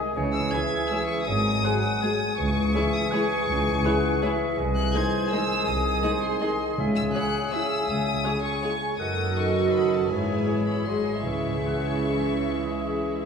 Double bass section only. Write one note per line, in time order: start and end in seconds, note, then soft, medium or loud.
0.15 0.46 C#2 medium
1.27 1.58 G#1 medium
2.38 2.68 C#2 medium
3.48 3.78 C#2 medium
4.58 4.88 C2 medium
5.67 5.97 C2 medium
6.78 7.08 C#2 medium
7.88 8.18 C#2 medium
8.99 10.07 F#1 medium
10.11 10.87 G#1 soft
10.88 11.25 G#1 soft
11.26 13.25 C#2 soft